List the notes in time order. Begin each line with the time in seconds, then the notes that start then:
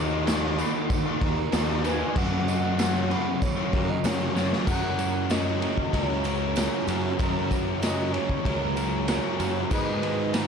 Already playing: D#2 D#3 A#3 D#4 F#4 D#5
0.11 A#3 D#4 F#4
0.26 D#3 A#3 D#4 F#4 C#5, snare, tambourine, crash
0.43 A#3 D#4 F#4
0.58 D#3 A#3 D#4 F#4 B5, tambourine, crash
0.73 A#3 D#4 F#4, muted overdriven electric guitar stroke
0.90 kick, tambourine, crash
1.05 A#3 D#4 F#4
1.21 D#2 A#4, kick, crash
1.36 A#3 D#4 F#4, muted overdriven electric guitar stroke
1.51 D#2 D#3 A#3 D#4 F#4, snare, tambourine, crash
1.68 A#3 D#4 F#4
1.84 D#3 A#3 D#4 F#4 B4 G#5, tambourine, crash
2.00 A#3 D#4 F#4
2.15 F#2 C#3 E3 F#3 A#3 C#4 F#4 F#5, kick, tambourine, crash
2.47 E3 A#3 C#4 F#4 D#5, tambourine, crash
2.63 E3 A#3 C#4 F#4
2.78 F#2 C#3 E3 A#3 C#4 F#4 C#5, snare, tambourine, crash
2.95 E3 A#3 C#4 F#4
3.10 E3 A#3 C#4 F#4 B5, crash
3.26 E3 A#3 C#4 F#4, muted overdriven electric guitar stroke
3.42 C#5, kick, tambourine, crash
3.58 E3 A#3 C#4 F#4
3.73 F#2 A#4, kick, crash
3.89 E3 A#3 C#4 F#4 D#5, muted overdriven electric guitar stroke
4.04 F#2 C#3 E3 A#3 C#4 F#4 C#5, snare, tambourine, crash
4.19 E3 A#3 C#4 F#4
4.35 F#2 C#3 E3 F#3 A#3 C#4 F#4 C#5, snare, tambourine
4.51 E3 A#3 C#4 F#4, snare
4.66 F#2 C#3 F#3 C#4 E4 A#4 F#5, kick, crash, tambourine
4.99 F#2 C#3 F#3, ride, tambourine
5.30 F#2 C#3 F#3 C#4 E4 F#4 A#4 D#5, snare, ride, tambourine
5.62 F#2 C#3 F#3 C#4 E4 A#4, ride
5.78 kick
5.93 C#2 F#2 C#3 F#3 C#4 E4 A#4 C#5, kick, ride
6.24 F#2 C#3 F#3 C#4 E4 A#4, ride, tambourine
6.55 F#2 C#3 F#3 C#4 E4 A#4, snare, ride, tambourine
6.87 F#2 C#3 F#3 F#4, ride, tambourine
7.19 F#2 C#3 F#3 C#4 E4 A#4, kick, ride, tambourine
7.51 F#2 C#3 F#3, kick, ride, tambourine
7.81 F#2 C#3 F#3 C#4 E4 F#4 A#4 D#5, snare, ride, tambourine
8.13 F#2 C#3 F#3 C#4 E4 A#4 C#5, ride
8.29 kick
8.44 C#2 F#2 C#3 F#3 C#4 E4 A#4, kick, ride
8.75 F#2 C#3 F#3 C#4 E4 A#4, ride, tambourine
9.08 F#2 C#3 F#3 C#4 E4 A#4, snare, ride, tambourine
9.39 F#2 C#3 F#3 F#4, ride, tambourine
9.70 G#2 D#3 G#3 B3 D#4 B4 D#5, kick, crash, tambourine
10.03 G#2 D#3 G#3, ride
10.33 G#2 D#3 G#3 B3 D#4 G#4 B4 A#5, snare, ride, tambourine